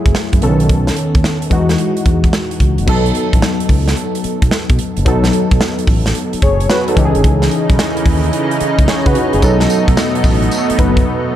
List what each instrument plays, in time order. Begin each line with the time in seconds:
Already playing: synth keys F#3 A3 E4 G#4
0.06 fingered electric bass F#1, kick, closed hi-hat
0.15 snare
0.33 fingered electric bass F#2, kick, closed hi-hat
0.41 fingered electric bass B1, synth keys C#3 B3 C#4 A4, closed hi-hat
0.48 synth keys D#3
0.60 closed hi-hat
0.69 kick, closed hi-hat
0.87 snare, closed hi-hat
0.96 closed hi-hat
1.15 fingered electric bass D#2, kick, closed hi-hat
1.24 snare
1.42 closed hi-hat
1.50 fingered electric bass E2, synth keys E3 G#3 D#4 F#4, kick, closed hi-hat
1.69 snare, closed hi-hat
1.78 closed hi-hat
1.97 closed hi-hat
2.06 fingered electric bass E2, kick, closed hi-hat
2.24 kick, closed hi-hat
2.33 snare
2.51 closed hi-hat
2.60 fingered electric bass C#2, kick, closed hi-hat
2.78 fingered electric bass F#1, closed hi-hat
2.87 fingered electric bass B1, synth keys F#3 B3 D#4 A4, kick, crash
3.06 closed hi-hat
3.15 closed hi-hat
3.33 fingered electric bass A1, kick, closed hi-hat
3.42 snare
3.60 closed hi-hat
3.69 fingered electric bass C#2, kick, open hi-hat
3.88 snare, closed hi-hat
3.97 closed hi-hat
4.15 closed hi-hat
4.24 muted fingered electric bass stroke, closed hi-hat
4.42 fingered electric bass B1, kick, closed hi-hat
4.51 snare
4.69 fingered electric bass B2, kick, closed hi-hat
4.79 closed hi-hat
4.97 fingered electric bass F#1, closed hi-hat
5.05 fingered electric bass B1, synth keys F#3 B3 D#4 A4, kick, closed hi-hat
5.24 snare, closed hi-hat
5.33 closed hi-hat
5.51 fingered electric bass B1, kick, closed hi-hat
5.61 snare
5.79 closed hi-hat
5.87 fingered electric bass A1, kick, open hi-hat
6.06 snare, closed hi-hat
6.15 closed hi-hat
6.33 muted fingered electric bass stroke, closed hi-hat
6.42 fingered electric bass F#1, synth keys G#4 C#5, kick, closed hi-hat
6.60 closed hi-hat
6.70 synth keys F#4 B4, snare
6.88 synth keys D#4 A4, closed hi-hat
6.96 fingered electric bass C#2, synth keys E3 C#4 D#4 G4, kick, closed hi-hat
7.05 synth keys G#4
7.15 fingered electric bass G#1, closed hi-hat
7.24 fingered electric bass C#2, analog synth pad C#3 E3 D#4, kick, closed hi-hat
7.42 snare, closed hi-hat
7.51 closed hi-hat
7.69 fingered electric bass B1, kick, closed hi-hat
7.79 snare
7.97 closed hi-hat
8.06 fingered electric bass D#2, kick, open hi-hat
8.24 closed hi-hat
8.33 closed hi-hat
8.51 closed hi-hat
8.60 muted fingered electric bass stroke, closed hi-hat
8.79 fingered electric bass C#2, kick, closed hi-hat
8.88 synth keys G#4 C#5, snare
9.06 fingered electric bass C#3, synth keys F#4 B4, kick, closed hi-hat
9.15 synth keys C#4 F#4, closed hi-hat
9.33 fingered electric bass F#1, synth keys D#4 G#4, closed hi-hat
9.42 fingered electric bass B1, analog synth pad B2 A3, synth keys F#3 B3 D#4 A4, kick, closed hi-hat, tambourine
9.60 snare, closed hi-hat
9.70 closed hi-hat, tambourine
9.88 fingered electric bass B1, kick, closed hi-hat
9.97 snare, tambourine
10.15 closed hi-hat
10.24 fingered electric bass A1, kick, open hi-hat, tambourine
10.42 closed hi-hat
10.51 closed hi-hat, tambourine
10.70 muted fingered electric bass stroke, closed hi-hat
10.79 fingered electric bass F#1, synth keys F#3 B3 D#4 B4, kick, closed hi-hat
10.97 kick, closed hi-hat